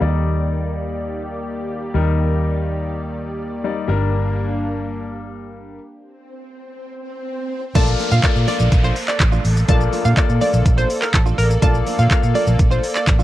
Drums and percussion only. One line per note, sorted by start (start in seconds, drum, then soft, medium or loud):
7.75 kick loud
7.75 closed hi-hat medium
7.75 crash loud
7.75 shaker medium
7.87 shaker medium
7.99 open hi-hat medium
7.99 shaker medium
8.11 shaker medium
8.24 kick loud
8.24 clap loud
8.24 closed hi-hat medium
8.24 shaker medium
8.36 shaker medium
8.48 open hi-hat medium
8.48 shaker soft
8.60 shaker medium
8.72 kick loud
8.72 closed hi-hat medium
8.72 shaker medium
8.84 shaker soft
8.96 open hi-hat medium
8.96 shaker medium
9.08 clap medium
9.08 shaker medium
9.20 kick loud
9.20 clap loud
9.20 closed hi-hat medium
9.20 shaker medium
9.32 shaker medium
9.45 open hi-hat medium
9.45 shaker medium
9.57 shaker medium
9.69 kick loud
9.69 closed hi-hat medium
9.69 shaker medium
9.81 shaker medium
9.93 open hi-hat medium
9.93 shaker medium
10.05 shaker medium
10.17 kick loud
10.17 clap loud
10.17 closed hi-hat medium
10.17 shaker medium
10.29 shaker medium
10.41 open hi-hat medium
10.41 shaker soft
10.53 shaker medium
10.66 kick loud
10.66 closed hi-hat medium
10.66 shaker medium
10.78 shaker medium
10.90 open hi-hat medium
10.90 shaker medium
11.02 clap medium
11.02 shaker medium
11.14 kick loud
11.14 clap loud
11.14 closed hi-hat medium
11.14 shaker medium
11.26 shaker medium
11.39 open hi-hat medium
11.39 shaker medium
11.51 shaker medium
11.62 kick loud
11.62 closed hi-hat medium
11.62 shaker medium
11.75 shaker medium
11.87 open hi-hat medium
11.87 shaker soft
11.99 shaker medium
12.11 kick loud
12.11 clap loud
12.11 closed hi-hat medium
12.11 shaker medium
12.23 shaker medium
12.35 open hi-hat medium
12.35 shaker soft
12.47 shaker medium
12.59 kick loud
12.59 closed hi-hat medium
12.59 shaker medium
12.71 shaker medium
12.83 open hi-hat medium
12.83 shaker medium
12.95 clap medium
12.95 shaker medium
13.07 kick loud
13.07 clap loud
13.07 closed hi-hat medium
13.07 shaker medium
13.20 shaker medium